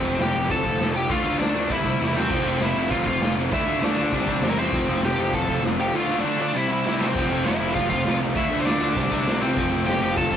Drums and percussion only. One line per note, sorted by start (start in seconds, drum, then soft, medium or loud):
0.20 snare loud
0.20 open hi-hat medium
0.50 kick loud
0.50 open hi-hat medium
0.65 kick medium
0.80 snare loud
0.80 open hi-hat medium
1.09 kick loud
1.09 open hi-hat medium
1.40 snare loud
1.40 open hi-hat medium
1.70 kick loud
1.70 open hi-hat medium
1.85 kick medium
2.01 snare medium
2.15 snare loud
2.30 kick loud
2.30 crash loud
2.60 snare loud
2.60 open hi-hat medium
2.90 kick loud
2.90 open hi-hat medium
3.06 kick medium
3.21 snare loud
3.21 open hi-hat medium
3.52 kick loud
3.52 open hi-hat medium
3.82 snare loud
3.82 open hi-hat medium
4.12 kick loud
4.12 open hi-hat medium
4.27 kick medium
4.42 snare loud
4.42 open hi-hat medium
4.73 kick loud
4.73 open hi-hat medium
5.02 snare loud
5.02 open hi-hat medium
5.33 kick loud
5.33 open hi-hat medium
5.48 kick medium
5.64 snare loud
5.64 open hi-hat medium
6.86 snare medium
7.01 snare loud
7.15 kick loud
7.15 crash loud
7.45 snare loud
7.45 open hi-hat medium
7.75 kick loud
7.75 open hi-hat medium
7.91 kick medium
8.05 snare loud
8.05 open hi-hat medium
8.35 kick loud
8.35 open hi-hat medium
8.66 snare loud
8.66 open hi-hat medium
8.96 kick loud
8.96 open hi-hat medium
9.11 kick medium
9.27 snare loud
9.27 open hi-hat medium
9.57 kick loud
9.57 open hi-hat medium
9.87 snare loud
9.87 open hi-hat medium
10.17 kick loud
10.17 open hi-hat medium
10.32 kick medium